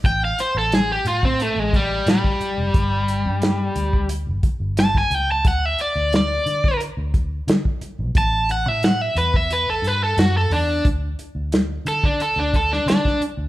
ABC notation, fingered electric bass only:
X:1
M:4/4
L:1/16
Q:1/4=89
K:D
V:1 name="Fingered electric bass" clef=bass
A,,,2 z A,,,3 A,,3 A,,,3 A,, z2 F,,, | G,,,3 G,,3 D,,3 G,,, z G,,,3 C,,2 | D,,2 z D,,3 D,3 D,,3 D, z2 B,,, | A,,,3 A,,3 E,,3 A,,, G,,2 F,,2 E,,2 |
D,,2 z D,,3 D,3 D,,3 D, z2 D,, |]